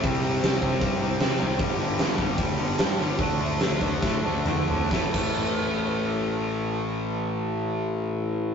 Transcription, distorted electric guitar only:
\new Staff \with { instrumentName = "Distorted electric guitar" } { \clef bass \time 4/4 \key d \major \tempo 4 = 140 <c g c'>8 <c g c'>8 <c g c'>8 <c g c'>8 <c g c'>8 <c g c'>8 <c g c'>8 <c g c'>8 | <g, d g>8 <g, d g>8 <g, d g>8 <g, d g>8 <g, d g>8 <g, d g>8 <g, d g>8 <g, d g>8 | <d a d'>8 <d a d'>8 <d a d'>8 <d a d'>8 <d a d'>8 <d a d'>8 <d a d'>8 <d a d'>8 | <a, e a>8 <a, e a>2.~ <a, e a>8~ |
<a, e a>1 | }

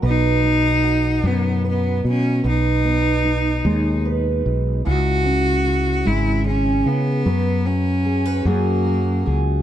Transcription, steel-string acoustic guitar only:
\new Staff \with { instrumentName = "Steel-string acoustic guitar" } { \time 6/8 \key b \major \tempo 4. = 50 << { b'8 dis'8 fis'4 b'4 | b'8 b8 dis'4 b'4 | e'8 cis'8 e'4 gis'4 | b'8 fis'8 gis'16 b'16 <cis' fis' gis'>8 fis'8 gis'8 | } \\ { <b, fis>4. fis4. | b,4. gis4. | cis4. gis4. | fis4. fis4. | } >> }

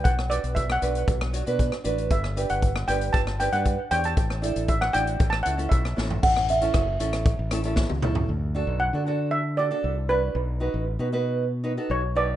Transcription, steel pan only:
\new Staff \with { instrumentName = "Steel pan" } { \time 4/4 \key d \major \tempo 4 = 116 fis''8 d''8 \tuplet 3/2 { e''8 fis''4~ } fis''8. r4 r16 | e''8. fis''8. g''8 a''8 g''16 fis''8. g''16 a''16~ | a''16 r8. e''16 fis''16 g''8. a''16 fis''8 e''4 | r1 |
r4 fis''4 e''8 d''4 b'8~ | b'2. cis''8 d''8 | }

